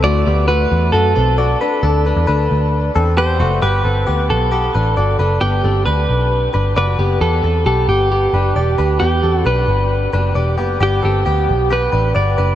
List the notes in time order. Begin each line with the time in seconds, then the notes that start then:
0.04 D2 A3 F#4 D5
0.26 D2 B3 G4
0.48 A3 F#4 B4
0.72 E2
0.92 F#2 A3 F#4 A4
1.16 B1 C4 A4
1.38 F#4 D5
1.61 D4 B4
1.83 D2 D4 A4
2.06 D4 B4
2.17 E2
2.27 D2 D4 B4
2.51 D2
2.96 E2 C4 A4
3.17 B3 G4 C5
3.40 F#1 A3 F#4
3.62 G1 B3 G4 B4
3.85 G1 C4 A4
4.07 D2 B3 G4
4.30 B1 A4
4.52 B3 G4
4.75 A1 D4 B4
4.97 G1 F#4 D5
5.19 F#1 D4 B4
5.41 G1 B3 G4
5.64 G1 C4 A4
5.86 D2 D4 B4
6.09 B1
6.54 G1 D4 B4
6.76 F#1 F#4 B4 D5
6.99 F#1 B3 G4
7.21 E2 B3 G4 A4
7.44 E2 C4 A4
7.66 B1 B3 G4 A4
7.88 G1 G4
8.12 B3 G4
8.33 F#1 D4 B4
8.56 E1 G4 D5
8.78 D2 D4 B4
9.00 E2 B3 G4
9.23 E2 C4 A4
9.35 F#4
9.45 B1 D4 B4
9.68 G1
10.13 F#1 D4 B4
10.35 E1 G4 D5
10.58 F#1 B3 G4
10.80 G1 B3 G4
11.03 G1 C4 G4 A4
11.26 D2 B3 G4
11.49 B1
11.70 B3 G4 B4
11.92 A1 D4 B4
12.15 G1 F#4 D5
12.38 F#1 D4 B4